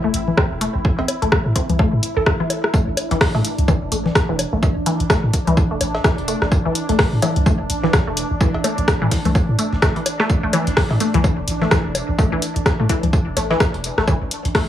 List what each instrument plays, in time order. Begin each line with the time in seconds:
Already playing: synth texture E4
0.04 sub bass E1, synth pluck A3
0.14 sub bass A1, closed hi-hat
0.28 low conga
0.37 synth pluck C4, kick, cross-stick, low woodblock
0.51 sub bass E1
0.61 synth pluck A3, closed hi-hat
0.75 sub bass A1
0.85 kick
0.99 sub bass A1, synth pluck C4, cowbell
1.08 closed hi-hat, low woodblock
1.22 sub bass A1, synth pluck A3, closed hi-hat
1.32 kick, cross-stick
1.46 sub bass A2
1.56 synth pluck C4, kick, closed hi-hat
1.70 sub bass C2, closed hi-hat, low conga
1.79 synth pluck A3, kick, low woodblock
1.93 sub bass A2
2.03 closed hi-hat
2.17 sub bass A1, synth pluck A4
2.26 kick, cross-stick, cowbell
2.40 synth pluck E4, low conga
2.50 closed hi-hat, low woodblock
2.64 cross-stick
2.74 synth pluck A3, synth texture D4, kick, tambourine
2.87 sub bass A1
2.97 closed hi-hat, tambourine, low woodblock
3.11 sub bass A1, synth pluck E3, closed hi-hat
3.21 kick, cross-stick, snare, open hi-hat
3.35 sub bass A2, synth pluck A3, cowbell
3.45 closed hi-hat, tambourine
3.58 sub bass C2, closed hi-hat
3.68 synth pluck E3, kick, tambourine, low conga, low woodblock
3.82 sub bass E1
3.92 sub bass A1, synth pluck A3, closed hi-hat, tambourine
4.06 snare, low conga
4.15 kick, cross-stick, snare, tambourine
4.29 sub bass E1, synth pluck E3
4.39 closed hi-hat, tambourine, low woodblock
4.53 sub bass A1, synth pluck A3
4.63 kick, tambourine, cowbell
4.76 sub bass A1
4.86 synth pluck E3, closed hi-hat, tambourine
5.00 sub bass A1, closed hi-hat
5.10 synth pluck A3, kick, cross-stick, snare, tambourine, low woodblock
5.24 sub bass A2
5.33 kick, closed hi-hat, tambourine
5.47 sub bass C2, synth pluck E3, closed hi-hat, low conga
5.57 kick, tambourine
5.71 sub bass E1, synth pluck A3
5.81 sub bass A1, closed hi-hat, tambourine, low woodblock
5.95 snare, cowbell
6.04 synth pluck E3, kick, cross-stick, snare, tambourine
6.18 sub bass E1, closed hi-hat
6.28 synth pluck A3, closed hi-hat, tambourine
6.42 sub bass A1, cross-stick, snare
6.52 kick, tambourine, low woodblock
6.65 sub bass A1, synth pluck E3
6.75 closed hi-hat, tambourine
6.89 sub bass A1, synth pluck A3, closed hi-hat
6.99 kick, cross-stick, snare, open hi-hat
7.13 sub bass A2
7.22 synth pluck E3, closed hi-hat, tambourine, cowbell, low woodblock
7.36 sub bass C2, closed hi-hat
7.46 synth pluck A3, kick, tambourine, low conga
7.60 sub bass E1
7.70 sub bass A1, closed hi-hat, tambourine
7.84 synth pluck E3, snare, low conga
7.93 kick, cross-stick, snare, tambourine, low woodblock
8.07 sub bass E1, synth pluck A3
8.17 closed hi-hat, tambourine
8.31 sub bass A1
8.41 synth pluck E3, kick, tambourine
8.54 sub bass A1, cowbell
8.64 synth pluck A3, closed hi-hat, tambourine, low woodblock
8.78 sub bass A1, closed hi-hat
8.88 kick, cross-stick, snare, tambourine
9.02 sub bass A2, synth pluck E3
9.11 kick, snare, closed hi-hat, open hi-hat
9.25 sub bass C2, synth pluck A3, closed hi-hat, low conga
9.35 kick, tambourine, low woodblock
9.49 sub bass A2
9.59 synth pluck A3, closed hi-hat, tambourine
9.73 sub bass A1, snare
9.82 synth pluck A3, kick, cross-stick, snare, tambourine, cowbell
9.96 synth pluck E3, closed hi-hat
10.06 closed hi-hat, tambourine, low woodblock
10.20 synth pluck A3, cross-stick, snare
10.30 kick, tambourine
10.43 sub bass A1, synth pluck A3
10.53 synth pluck E3, closed hi-hat, tambourine, low woodblock
10.67 sub bass A1, closed hi-hat
10.77 kick, cross-stick, snare, open hi-hat
10.91 sub bass A2, cowbell
11.00 synth pluck A3, closed hi-hat, tambourine
11.14 sub bass C2, synth pluck E3, closed hi-hat
11.24 kick, tambourine, low conga, low woodblock
11.38 sub bass E1
11.48 sub bass A1, closed hi-hat, tambourine
11.61 synth pluck A3, snare, low conga
11.71 synth pluck E3, kick, cross-stick, snare, tambourine
11.85 sub bass E1
11.95 closed hi-hat, tambourine, low woodblock
12.09 sub bass A1
12.18 synth pluck A3, kick, tambourine, cowbell
12.32 sub bass A1, synth pluck E3
12.42 closed hi-hat, tambourine
12.56 sub bass A1, closed hi-hat
12.66 kick, cross-stick, snare, tambourine, low woodblock
12.80 sub bass A2, synth pluck A3
12.89 synth pluck E3, kick, closed hi-hat, tambourine
13.03 sub bass C2, closed hi-hat, low conga
13.13 kick, tambourine
13.27 sub bass E1
13.37 sub bass A1, synth pluck A3, closed hi-hat, tambourine, low woodblock
13.51 synth pluck E3, snare, cowbell
13.60 kick, cross-stick, snare, tambourine
13.74 sub bass E1, closed hi-hat
13.84 closed hi-hat, tambourine
13.98 sub bass A1, synth pluck A3, cross-stick, snare
14.07 synth pluck E3, kick, tambourine, low woodblock
14.21 sub bass A1
14.31 closed hi-hat, tambourine
14.45 sub bass A1, closed hi-hat
14.55 synth pluck A3, kick, cross-stick, snare, open hi-hat